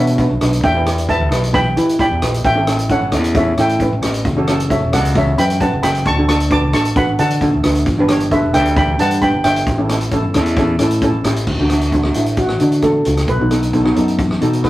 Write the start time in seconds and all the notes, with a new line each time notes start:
Already playing: B2 F#4 B4 C#5 E5
0.07 closed hi-hat
0.18 D4 F#4 B4, kick, closed hi-hat
0.31 B1
0.41 B1 D4 F#4 B4, cross-stick, closed hi-hat
0.53 closed hi-hat
0.64 E2 E5 G5, kick, closed hi-hat
0.75 E4 G4 B4
0.86 E4 G4 D5, cross-stick, closed hi-hat
0.98 closed hi-hat
1.08 E4 G4 B4 E5 A5, kick, closed hi-hat
1.21 D2
1.31 B1 E4 G4 B4, cross-stick, closed hi-hat
1.44 closed hi-hat
1.53 E4 G4 B4 G5 B5, kick, closed hi-hat
1.77 E3 E4 G4 B4, closed hi-hat
1.89 closed hi-hat
1.99 E4 G4 D5 G5 B5, kick, closed hi-hat
2.11 E2
2.22 A#1 E4 G4 B4, cross-stick, closed hi-hat
2.34 closed hi-hat
2.44 A1 E5 G5, kick, closed hi-hat
2.55 C#4 E4 A4
2.67 C#4 E4 A4, cross-stick, closed hi-hat
2.79 closed hi-hat
2.89 C#4 E4 A4 C#5 F#5, kick, closed hi-hat
3.02 G1
3.12 E2 C#4 E4 A4, cross-stick, closed hi-hat
3.24 closed hi-hat
3.35 C#4 E4 A4 C#5 E5, kick, closed hi-hat
3.58 A2 C#4 E4 A4 E5 G5, cross-stick, closed hi-hat
3.69 closed hi-hat
3.80 C#4 E4 B4, kick, closed hi-hat
3.93 A1
4.02 A1 C#4 E4 G4, cross-stick, closed hi-hat
4.14 closed hi-hat
4.25 F#1, kick, closed hi-hat
4.37 C#4 F#4 A4
4.48 C#4 F#4 A4, cross-stick, closed hi-hat
4.60 closed hi-hat
4.70 C#4 F#4 A4 C#5 E5, kick, closed hi-hat
4.83 E1
4.92 C#2 C#4 F#4 A4 D5 F#5, cross-stick, closed hi-hat
5.05 closed hi-hat
5.15 C#4 F#4 A4 C#5 E5, kick, closed hi-hat
5.38 F#2 C#4 F#4 B4 G5 B5, closed hi-hat
5.50 closed hi-hat
5.60 C#4 F#4 B4 F#5 A5, kick, closed hi-hat
5.73 F#1
5.83 F#1 C#4 F#4 A4 G5 B5, cross-stick, closed hi-hat
5.95 closed hi-hat
6.05 D2 A5 C#6, kick, closed hi-hat
6.17 D4 F#4 A4
6.28 D4 F#4 A4 A5 C#6, cross-stick, closed hi-hat
6.40 closed hi-hat
6.51 D4 F#4 B4 A5 D6, kick, closed hi-hat
6.63 C#2
6.73 A1 D4 F#4 A4 A5 C#6, cross-stick, closed hi-hat
6.85 closed hi-hat
6.96 D4 F#4 B4 F#5 B5, kick, closed hi-hat
7.19 D3 D4 F#4 A4 F#5 A5, closed hi-hat
7.30 closed hi-hat
7.41 D4 F#4 A4, kick, closed hi-hat
7.54 D2
7.64 D2 D4 F#4 B4, cross-stick, closed hi-hat
7.75 closed hi-hat
7.86 G1, kick, closed hi-hat
7.98 D4 G4 B4
8.08 D4 G4 C#5, cross-stick, closed hi-hat
8.20 closed hi-hat
8.31 D4 G4 A4 B4 E5, kick, closed hi-hat
8.44 E1
8.53 D2 D4 G4 B4 E5 G5, cross-stick, closed hi-hat
8.65 closed hi-hat
8.76 D4 G4 D5 G5 B5, kick, closed hi-hat
8.98 G2 D4 G4 B4 F#5 A5, closed hi-hat
9.11 closed hi-hat
9.21 D4 G4 B4 G5 B5, kick, closed hi-hat
9.34 G1
9.44 G1 D4 G4 C#5 E5 G5, cross-stick, closed hi-hat
9.56 closed hi-hat
9.67 A1, kick, closed hi-hat
9.78 C#4 E4 A4
9.89 C#4 E4 A4, cross-stick, closed hi-hat
10.01 closed hi-hat
10.11 C#4 E4 A4, kick, closed hi-hat
10.25 G1
10.34 E2 C#4 E4 A4, cross-stick, closed hi-hat
10.46 closed hi-hat
10.56 C#4 E4 A4, kick, closed hi-hat
10.79 A2 C#4 E4 A4, cross-stick, closed hi-hat
10.91 closed hi-hat
11.02 C#4 E4 A4, kick, closed hi-hat
11.15 A1
11.24 A1 C#4 E4 G4, cross-stick, closed hi-hat
11.36 closed hi-hat
11.47 D2, kick, crash
11.59 D2 A3 D4 F#4
11.70 A3 D4 F#4, cross-stick, closed hi-hat
11.81 closed hi-hat
11.92 A3 D4 F#4, kick, closed hi-hat
12.03 A3 D4 F#4, cross-stick
12.14 A1 A3 D4 E4 F#4, closed hi-hat
12.26 closed hi-hat
12.37 F#4, kick, closed hi-hat
12.49 cross-stick
12.60 D3 A3 D4 F#4, closed hi-hat
12.72 closed hi-hat
12.82 A3 D4 F#4 A4, kick, cross-stick, closed hi-hat
13.05 C#2 A3 D4 F#4, closed hi-hat
13.17 cross-stick, closed hi-hat
13.28 B1 B4, kick, closed hi-hat
13.40 B1 B3 D#4 F#4
13.50 B3 D#4 A4, cross-stick, closed hi-hat
13.63 closed hi-hat
13.73 B3 D#4 A4, kick, closed hi-hat
13.84 B3 D#4 F#4, cross-stick
13.96 F#2 B3 D#4 A4, closed hi-hat
14.08 closed hi-hat
14.19 kick, closed hi-hat
14.31 cross-stick
14.41 B2 B3 D#4 A4, closed hi-hat
14.53 closed hi-hat
14.63 B3 D#4 F#4 B4, kick, cross-stick, closed hi-hat